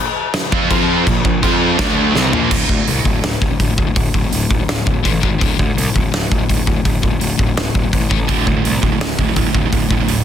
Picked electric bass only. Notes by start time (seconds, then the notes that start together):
0.52 F2
0.71 F2
1.07 A#1
1.25 A#1
1.44 F2
1.79 D2
2.15 C2
2.34 A#1
2.52 D1
2.69 D2
2.88 C2
3.06 D1
3.23 D1
3.41 D1
3.61 D1
3.78 D1
3.96 D1
4.14 D1
4.33 D1
4.51 D1
4.69 D1
4.87 D1
5.06 A1
5.24 G#1
5.42 D1
5.59 D2
5.76 C2
5.96 D1
6.14 D1
6.31 D1
6.50 D1
6.67 D1
6.86 D1
7.03 D1
7.20 D1
7.39 D1
7.56 D1
7.75 D1
7.93 A1
8.11 A1
8.29 D1
8.47 D2
8.66 C2
8.83 D1
9.02 D1
9.19 D1
9.37 D1
9.55 D1
9.73 D1
9.90 D1
10.08 D1